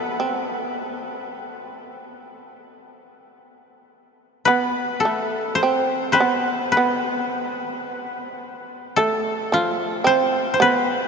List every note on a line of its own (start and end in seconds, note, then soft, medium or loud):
0.00 0.15 A3 medium
0.00 0.70 F4 medium
0.00 1.11 B4 medium
0.20 0.45 C4 medium
4.45 5.01 B3 medium
4.45 5.61 B4 medium
5.00 6.90 A4 medium
5.05 5.59 A3 medium
5.55 6.12 C5 medium
5.63 6.10 C4 medium
6.12 6.21 C4 soft
6.12 6.71 B4 medium
6.12 6.78 C5 soft
6.20 6.74 B3 medium
6.72 8.49 B4 medium
6.77 7.57 B3 medium
8.96 9.48 A3 medium
8.96 10.87 A4 medium
9.52 10.03 F3 medium
9.52 11.08 F4 medium
10.04 10.56 C4 medium
10.04 10.53 C5 medium
10.54 10.68 C5 medium
10.60 11.08 B3 medium
10.60 11.08 B4 medium